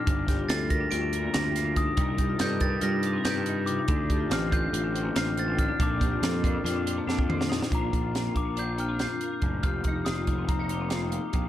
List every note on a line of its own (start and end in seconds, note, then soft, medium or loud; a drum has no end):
0.00 0.28 A#3 medium
0.00 0.71 D4 medium
0.00 0.51 F6 medium
0.07 0.42 G1 medium
0.07 1.75 G2 medium
0.07 0.28 D4 medium
0.07 kick loud
0.07 closed hi-hat loud
0.28 1.96 G3 medium
0.28 0.39 G4 medium
0.28 kick medium
0.28 snare soft
0.28 closed hi-hat medium
0.39 0.50 F4 medium
0.49 0.84 D2 loud
0.49 1.54 F4 medium
0.49 0.71 A4 medium
0.49 0.71 A6 medium
0.49 snare loud
0.49 closed hi-hat medium
0.70 1.34 G4 medium
0.70 0.81 A#4 medium
0.70 0.91 A#6 loud
0.70 kick medium
0.70 closed hi-hat medium
0.80 0.92 D4 medium
0.91 1.27 D2 medium
0.91 1.99 D3 medium
0.91 1.03 F4 medium
0.91 1.31 D7 loud
0.91 snare soft
0.91 closed hi-hat medium
1.02 1.24 D4 medium
1.13 1.97 A#4 medium
1.13 closed hi-hat medium
1.23 1.34 A#3 medium
1.33 1.87 D2 medium
1.33 1.45 D4 medium
1.33 1.96 G4 medium
1.33 1.54 A#6 medium
1.33 snare loud
1.33 closed hi-hat medium
1.44 1.66 F4 medium
1.56 1.96 F4 medium
1.56 snare soft
1.56 closed hi-hat medium
1.65 1.77 D4 medium
1.76 1.96 G2 medium
1.76 1.87 D#4 medium
1.76 2.43 D#6 medium
1.76 kick medium
1.76 closed hi-hat medium
1.87 1.98 D4 medium
1.97 2.33 C2 medium
1.97 3.68 C3 medium
1.97 2.16 G3 medium
1.97 2.19 D#4 medium
1.97 2.39 D#4 medium
1.97 2.62 G4 medium
1.97 3.05 A#4 medium
1.97 kick loud
1.97 closed hi-hat medium
2.17 2.82 G3 medium
2.17 2.30 G4 medium
2.17 kick medium
2.17 closed hi-hat medium
2.29 2.41 F4 medium
2.39 2.76 G2 loud
2.39 3.47 D#4 medium
2.39 2.61 A4 medium
2.39 2.51 G6 loud
2.39 snare loud
2.39 closed hi-hat medium
2.60 3.05 G4 medium
2.60 2.72 A#4 medium
2.60 2.81 A6 loud
2.60 kick medium
2.60 closed hi-hat medium
2.70 2.82 D4 medium
2.81 3.17 G2 loud
2.81 3.87 G3 medium
2.81 2.93 F4 medium
2.81 3.27 A#6 loud
2.81 closed hi-hat loud
2.92 3.14 D#4 medium
3.03 3.16 G4 medium
3.03 closed hi-hat medium
3.13 3.25 C4 medium
3.13 3.90 A#4 medium
3.24 3.77 G2 medium
3.24 3.36 D#4 medium
3.24 3.45 G6 loud
3.24 snare loud
3.24 closed hi-hat medium
3.29 3.89 G4 medium
3.34 3.57 G4 medium
3.46 3.88 D#4 medium
3.46 closed hi-hat medium
3.56 3.68 D#4 medium
3.66 3.88 C3 medium
3.66 3.79 F4 medium
3.66 4.07 D6 medium
3.66 closed hi-hat medium
3.79 3.90 D#4 medium
3.88 4.24 D2 medium
3.88 5.59 D3 medium
3.88 4.10 D4 medium
3.88 kick loud
3.88 closed hi-hat loud
4.10 5.79 A3 medium
4.10 4.21 G4 medium
4.10 kick medium
4.10 closed hi-hat medium
4.20 4.31 F4 medium
4.30 4.66 A1 loud
4.30 5.36 C4 medium
4.30 4.52 G4 medium
4.30 4.52 F6 medium
4.30 snare loud
4.30 closed hi-hat medium
4.51 5.16 F4 medium
4.51 4.63 A4 medium
4.51 5.19 G6 loud
4.51 kick medium
4.51 closed hi-hat medium
4.62 4.74 D4 medium
4.72 5.08 A1 medium
4.72 5.58 A2 medium
4.72 4.85 F4 medium
4.72 closed hi-hat medium
4.84 5.06 D4 medium
4.95 5.78 C5 medium
4.95 closed hi-hat medium
5.05 5.16 A#3 medium
5.15 5.68 A1 medium
5.15 5.27 D4 medium
5.15 5.80 F4 medium
5.15 5.39 F6 medium
5.15 snare loud
5.15 closed hi-hat medium
5.26 5.48 F4 medium
5.37 5.78 C4 medium
5.37 5.61 A6 medium
5.37 closed hi-hat medium
5.48 5.59 D4 medium
5.58 5.81 D3 medium
5.58 5.70 D#4 medium
5.58 5.81 F6 medium
5.58 kick medium
5.58 closed hi-hat medium
5.69 5.79 D4 medium
5.79 6.15 A#1 loud
5.79 7.48 A#2 medium
5.79 5.98 A#3 medium
5.79 6.22 C4 medium
5.79 6.02 D4 medium
5.79 6.43 D4 medium
5.79 6.86 A4 medium
5.79 7.26 D6 medium
5.79 kick loud
5.79 closed hi-hat medium
6.00 7.68 A#3 medium
6.00 6.12 G4 medium
6.00 kick medium
6.00 closed hi-hat medium
6.12 6.23 F4 medium
6.22 6.57 F2 loud
6.22 7.28 C4 medium
6.22 6.44 A4 medium
6.22 snare loud
6.22 closed hi-hat medium
6.44 7.06 D4 medium
6.44 6.55 A#4 medium
6.44 kick medium
6.44 closed hi-hat medium
6.55 6.66 D4 medium
6.64 6.99 F2 loud
6.64 7.69 F3 medium
6.64 6.76 F4 loud
6.64 snare soft
6.64 closed hi-hat medium
6.76 6.97 D4 medium
6.86 6.97 G4 medium
6.86 closed hi-hat medium
6.97 7.08 A#3 medium
6.97 7.72 A4 medium
7.07 7.60 F2 medium
7.07 7.72 D4 medium
7.07 7.19 D4 medium
7.07 snare medium
7.18 7.40 F4 medium
7.18 kick medium
7.29 7.72 C4 medium
7.29 mid tom medium
7.40 7.51 D4 medium
7.40 snare medium
7.49 7.69 A#2 medium
7.49 7.61 D#4 medium
7.49 snare medium
7.61 7.72 D4 medium
7.61 snare medium
7.71 7.89 A#1 medium
7.71 9.43 A#2 medium
7.71 8.37 A#3 soft
7.71 7.94 D4 medium
7.71 7.93 F4 medium
7.71 8.16 F4 soft
7.71 kick loud
7.71 closed hi-hat medium
7.75 8.78 A#4 medium
7.75 8.39 A#5 medium
7.93 8.28 A#1 medium
7.93 8.04 D4 medium
7.93 8.15 D4 medium
7.93 kick medium
7.93 closed hi-hat soft
8.03 8.14 F4 medium
8.14 8.25 D4 medium
8.14 8.27 D4 medium
8.14 snare medium
8.14 closed hi-hat medium
8.25 8.36 F4 medium
8.25 9.01 F4 soft
8.34 9.05 A#1 medium
8.34 10.27 A#3 medium
8.34 8.46 D4 medium
8.34 8.58 D6 medium
8.34 kick medium
8.34 closed hi-hat soft
8.45 8.56 A#3 medium
8.56 8.78 D4 medium
8.56 9.61 D4 medium
8.56 8.80 G6 medium
8.56 closed hi-hat medium
8.78 8.89 A#3 medium
8.78 8.89 G4 medium
8.78 8.89 F6 medium
8.78 closed hi-hat soft
8.89 9.00 C4 medium
8.89 9.21 A#4 soft
8.99 9.10 F4 medium
8.99 9.62 F4 medium
8.99 9.66 G6 medium
8.99 snare medium
8.99 closed hi-hat medium
9.10 9.19 D4 medium
9.20 9.42 D4 medium
9.20 10.52 A#4 medium
9.20 closed hi-hat medium
9.42 9.60 F#1 medium
9.42 9.62 A#2 medium
9.42 9.64 A3 medium
9.42 kick medium
9.42 closed hi-hat soft
9.63 9.81 F1 medium
9.63 11.31 F3 medium
9.63 9.85 G4 medium
9.63 10.07 F6 medium
9.63 kick medium
9.63 closed hi-hat medium
9.84 10.02 F1 medium
9.84 9.96 D#4 medium
9.84 10.49 D#4 medium
9.84 kick medium
9.84 closed hi-hat medium
9.96 10.07 G4 medium
10.05 10.24 F1 medium
10.05 10.16 D4 medium
10.05 10.17 D#4 medium
10.05 10.50 D#6 medium
10.05 snare medium
10.05 closed hi-hat medium
10.16 10.89 F4 soft
10.16 10.28 F4 medium
10.27 10.45 F1 medium
10.27 11.49 A#3 medium
10.27 10.38 D#4 medium
10.27 kick medium
10.27 closed hi-hat medium
10.39 10.49 C4 medium
10.48 11.18 F1 medium
10.48 10.59 C4 medium
10.48 10.71 D#4 medium
10.48 11.09 A#5 medium
10.48 kick medium
10.48 closed hi-hat medium
10.59 11.49 D#4 soft
10.69 10.81 A#3 medium
10.69 11.13 G4 medium
10.69 closed hi-hat medium
10.81 10.92 C4 medium
10.90 11.49 F4 medium
10.90 11.02 F4 medium
10.90 snare medium
10.90 closed hi-hat medium
11.02 11.12 D#4 medium
11.12 11.34 D#4 medium
11.12 11.49 G4 medium
11.12 closed hi-hat medium
11.33 11.49 A#1 medium
11.33 11.49 F3 medium
11.33 11.49 A#3 medium
11.33 kick medium
11.33 closed hi-hat medium